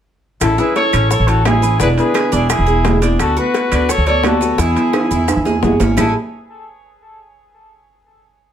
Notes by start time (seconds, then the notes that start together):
0.41 A1 E3 G#3 C#4 E4 A4, high bongo, high timbale, claves, maracas
0.58 G#3 C#4 E4 G#4 B4, high bongo, maracas
0.76 A4 C#5, high bongo, high timbale, low timbale, maracas
0.93 A1 G#3 C#4 E4, high bongo, high timbale, claves, maracas
1.10 E4 A4 C#5, muted nylon-string guitar stroke, high bongo, maracas
1.19 A1
1.27 G#3 C#4 E4 F#4 A4 C#5, high timbale, maracas
1.45 E3 G#3 C#4 E4 G#4, high bongo, low bongo, high timbale, low timbale, claves, maracas
1.62 G#3 C#4 E4 B4, high bongo, maracas
1.80 E1 B2 D3 G#3 B3 D4 E4 G#4 B4, high bongo, high timbale, maracas
1.98 D3 G#3 B3 E4 G#4 B4, high timbale, maracas
2.14 G#4, high bongo, high timbale, low timbale, claves, maracas
2.32 E1 G#3 B3 D4 E4 G#4, high bongo, maracas
2.49 E4 G#4, muted nylon-string guitar stroke, high bongo, high timbale, claves, maracas
2.58 E1
2.66 G#3 B3 E4 G#4, high bongo, maracas
2.84 B2 D3 G#3 B3 E4, high bongo, low bongo, high timbale, low timbale, maracas
3.02 G#3 B3 D4 E4, high bongo, high timbale, maracas
3.19 D2 D3 A3 B3 F#4 A4, high bongo, high timbale, claves, maracas
3.36 A3 B3 F#4 B4, high bongo, maracas
3.54 high bongo, high timbale, low timbale, maracas
3.72 D2 A3 B3 D4 F#4, high bongo, high timbale, claves, maracas
3.89 F#4 A4 C#5, muted nylon-string guitar stroke, high bongo, maracas
3.98 D2
4.06 A3 B3 F#4 A4 C#5 D5, high timbale, maracas
4.23 D3 A3 B3 F#4 A4, high bongo, low bongo, high timbale, low timbale, claves, maracas
4.41 A3 B3 F#4 B4, high bongo, maracas
4.58 E2 B2 E3 G#3 B3 E4 G#4, high bongo, high timbale, maracas
4.76 E3 G#3 B3 E4, high timbale, maracas
4.93 G#4, high bongo, high timbale, claves, maracas
5.10 E2 G#3 B3 E4, high bongo, maracas
5.27 muted nylon-string guitar stroke, high bongo, high timbale, claves, maracas
5.36 E2
5.45 G#3 B3 E4 G#4, high bongo, low timbale, maracas
5.62 F#1 B2 E3 G#3 B3 E4, high bongo, low bongo, low timbale, maracas
5.80 G#1 G#3 B3 C#4 E4, high bongo, low timbale, maracas
5.97 A1 A2 E3 G#3 A3 C#4 E4 G#4 A4, low bongo, low timbale, claves, maracas